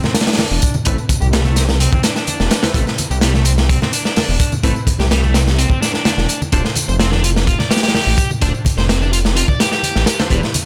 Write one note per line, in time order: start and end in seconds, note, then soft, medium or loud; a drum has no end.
0.03 0.13 C4 medium
0.03 snare soft
0.03 tambourine soft
0.03 high conga medium
0.15 0.25 D4 loud
0.15 snare medium
0.15 closed hi-hat medium
0.15 tambourine medium
0.20 snare medium
0.20 closed hi-hat medium
0.27 0.73 D4 loud
0.27 snare medium
0.27 closed hi-hat medium
0.27 tambourine soft
0.33 snare medium
0.33 closed hi-hat medium
0.38 snare loud
0.38 open hi-hat medium
0.38 tambourine soft
0.38 high conga medium
0.51 0.60 E1 medium
0.51 tambourine soft
0.62 kick loud
0.62 closed hi-hat medium
0.62 tambourine medium
0.74 tambourine soft
0.74 high conga medium
0.85 0.96 A1 loud
0.85 0.95 A3 medium
0.85 1.00 C4 medium
0.85 1.00 E4 medium
0.85 1.00 A4 medium
0.85 1.00 B4 medium
0.85 kick medium
0.85 closed hi-hat medium
0.85 tambourine soft
0.98 tambourine soft
1.09 kick loud
1.09 closed hi-hat medium
1.09 tambourine medium
1.09 high conga medium
1.21 1.88 C2 medium
1.21 1.27 G4 medium
1.21 tambourine soft
1.32 1.44 G3 medium
1.32 snare loud
1.32 closed hi-hat medium
1.32 tambourine soft
1.45 1.55 A3 medium
1.45 tambourine soft
1.45 high conga medium
1.56 1.63 C4 medium
1.56 snare soft
1.56 closed hi-hat medium
1.56 tambourine medium
1.69 snare medium
1.69 tambourine soft
1.80 1.90 C4 medium
1.80 closed hi-hat medium
1.80 tambourine soft
1.92 2.01 C4 medium
1.92 kick loud
1.92 tambourine soft
1.92 high conga loud
2.03 2.13 D4 loud
2.03 snare medium
2.03 closed hi-hat medium
2.03 tambourine medium
2.16 2.62 D4 loud
2.16 snare soft
2.16 tambourine soft
2.27 closed hi-hat medium
2.27 tambourine soft
2.27 high conga medium
2.40 2.49 E1 medium
2.40 snare soft
2.40 tambourine soft
2.51 snare loud
2.51 closed hi-hat medium
2.51 tambourine medium
2.63 2.72 C4 medium
2.63 2.72 E4 medium
2.63 2.72 A4 medium
2.63 2.72 B4 loud
2.63 snare loud
2.63 closed hi-hat medium
2.63 tambourine soft
2.63 high conga medium
2.74 2.84 A1 loud
2.74 2.85 A3 medium
2.74 2.89 C4 medium
2.74 2.89 E4 medium
2.74 2.89 A4 medium
2.74 2.89 B4 medium
2.74 kick loud
2.74 closed hi-hat medium
2.74 tambourine soft
2.87 snare soft
2.87 tambourine soft
2.98 closed hi-hat medium
2.98 tambourine medium
2.98 high conga medium
3.11 3.77 C2 medium
3.11 3.16 G4 medium
3.11 tambourine soft
3.21 3.33 G3 medium
3.21 snare loud
3.21 closed hi-hat medium
3.21 tambourine soft
3.34 3.45 A3 medium
3.34 snare soft
3.34 tambourine soft
3.34 high conga medium
3.45 3.52 C4 medium
3.45 closed hi-hat medium
3.45 tambourine medium
3.58 snare medium
3.58 tambourine soft
3.69 3.79 C4 medium
3.69 kick loud
3.69 closed hi-hat medium
3.69 tambourine soft
3.82 3.91 C4 loud
3.82 snare soft
3.82 tambourine soft
3.82 high conga loud
3.93 4.03 D4 loud
3.93 closed hi-hat medium
3.93 tambourine medium
4.05 4.51 D4 medium
4.05 snare soft
4.05 tambourine soft
4.16 snare loud
4.16 open hi-hat medium
4.16 tambourine soft
4.16 high conga medium
4.29 4.38 E1 medium
4.29 tambourine soft
4.40 kick loud
4.40 closed hi-hat medium
4.40 tambourine medium
4.52 tambourine soft
4.52 high conga medium
4.63 4.73 A1 loud
4.63 4.73 A3 medium
4.63 4.78 C4 medium
4.63 4.78 E4 medium
4.63 4.78 A4 medium
4.63 4.78 B4 medium
4.63 kick loud
4.63 closed hi-hat medium
4.63 tambourine soft
4.76 tambourine soft
4.87 kick loud
4.87 closed hi-hat medium
4.87 tambourine medium
4.87 high conga medium
4.99 5.66 C2 medium
4.99 5.05 G4 medium
4.99 snare soft
4.99 tambourine soft
5.11 5.22 G3 loud
5.11 snare loud
5.11 closed hi-hat medium
5.11 tambourine soft
5.23 5.33 A3 medium
5.23 tambourine soft
5.23 high conga medium
5.34 5.40 C4 medium
5.34 snare medium
5.34 closed hi-hat medium
5.34 tambourine medium
5.47 snare medium
5.47 tambourine soft
5.58 5.68 C4 medium
5.58 closed hi-hat medium
5.58 tambourine soft
5.70 5.79 C4 loud
5.70 kick medium
5.70 tambourine soft
5.70 high conga medium
5.81 5.91 D4 loud
5.81 snare medium
5.81 closed hi-hat medium
5.81 tambourine medium
5.94 6.40 D4 medium
5.94 snare soft
5.94 tambourine soft
6.05 snare loud
6.05 closed hi-hat medium
6.05 tambourine soft
6.05 high conga medium
6.18 6.27 E1 medium
6.18 snare soft
6.18 tambourine soft
6.29 closed hi-hat medium
6.29 tambourine medium
6.42 tambourine soft
6.42 high conga medium
6.52 6.62 D1 loud
6.52 6.67 D4 medium
6.52 6.62 D4 medium
6.52 6.67 F4 medium
6.52 6.67 A4 medium
6.52 6.67 C5 medium
6.52 kick loud
6.52 closed hi-hat medium
6.52 tambourine soft
6.65 snare soft
6.65 tambourine soft
6.75 closed hi-hat medium
6.75 tambourine medium
6.75 high conga medium
6.89 7.55 F1 medium
6.89 6.94 C5 medium
6.89 tambourine soft
7.00 7.11 C4 loud
7.00 snare loud
7.00 closed hi-hat medium
7.00 tambourine soft
7.12 7.22 D4 medium
7.12 snare medium
7.12 tambourine soft
7.12 high conga medium
7.23 7.29 F4 medium
7.23 closed hi-hat medium
7.23 tambourine medium
7.36 snare medium
7.36 tambourine soft
7.47 7.57 F4 medium
7.47 kick loud
7.47 closed hi-hat medium
7.47 tambourine soft
7.59 7.70 D5 medium
7.59 snare soft
7.59 tambourine soft
7.59 high conga loud
7.70 7.80 G4 loud
7.70 snare medium
7.70 closed hi-hat medium
7.70 tambourine medium
7.76 snare medium
7.76 closed hi-hat medium
7.83 8.29 G4 loud
7.83 snare medium
7.83 closed hi-hat medium
7.83 tambourine soft
7.88 snare medium
7.88 closed hi-hat medium
7.94 snare loud
7.94 open hi-hat medium
7.94 tambourine soft
7.94 high conga medium
8.07 8.15 A1 medium
8.07 tambourine soft
8.18 kick loud
8.18 closed hi-hat medium
8.18 tambourine medium
8.30 tambourine soft
8.30 high conga medium
8.41 8.51 D1 loud
8.41 8.51 D4 medium
8.41 8.56 D4 medium
8.41 8.56 F4 medium
8.41 8.56 A4 medium
8.41 8.56 C5 medium
8.41 kick medium
8.41 closed hi-hat medium
8.41 tambourine soft
8.54 tambourine soft
8.65 kick medium
8.65 closed hi-hat medium
8.65 tambourine medium
8.65 high conga medium
8.77 9.44 F1 medium
8.77 8.83 C5 medium
8.77 snare soft
8.77 tambourine soft
8.89 9.00 C4 loud
8.89 snare loud
8.89 closed hi-hat medium
8.89 tambourine soft
9.01 9.12 D4 medium
9.01 tambourine soft
9.01 high conga medium
9.13 9.18 F4 medium
9.13 closed hi-hat medium
9.13 tambourine medium
9.25 snare medium
9.25 tambourine soft
9.36 9.46 F4 medium
9.36 closed hi-hat medium
9.36 tambourine soft
9.48 9.59 D5 medium
9.48 kick medium
9.48 tambourine soft
9.48 high conga medium
9.60 9.70 G4 loud
9.60 snare loud
9.60 closed hi-hat medium
9.60 tambourine medium
9.72 10.18 G4 loud
9.72 snare soft
9.72 tambourine soft
9.83 closed hi-hat medium
9.83 tambourine soft
9.83 high conga medium
9.96 10.05 A1 medium
9.96 snare soft
9.96 tambourine soft
10.06 snare loud
10.06 closed hi-hat medium
10.06 tambourine medium
10.20 10.28 D4 medium
10.20 10.28 F4 medium
10.20 10.28 A4 medium
10.20 10.28 C5 loud
10.20 snare loud
10.20 closed hi-hat medium
10.20 high conga medium
10.30 10.40 E1 loud
10.30 10.40 E3 medium
10.30 10.45 D4 medium
10.30 10.45 E4 medium
10.30 10.45 G4 medium
10.30 10.45 B4 medium
10.30 kick loud
10.30 closed hi-hat medium
10.30 tambourine soft
10.43 snare soft
10.43 tambourine soft
10.54 closed hi-hat medium
10.54 tambourine medium
10.54 high conga medium